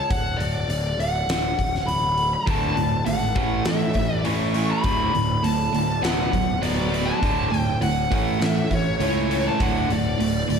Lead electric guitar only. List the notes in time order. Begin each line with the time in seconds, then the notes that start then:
Already playing: A5
0.10 F#5
0.37 D5
1.00 F#5
1.86 B5
2.33 A5
3.06 F#5
3.67 E5
4.14 D5
4.26 C#6
4.71 B5
5.44 A5
6.03 F#5
6.63 D5
7.05 A5
7.58 G5
7.82 F#5
8.14 F#5
8.43 E5
8.74 C#5
9.03 C#5
9.47 A5
9.61 F#5
9.92 D5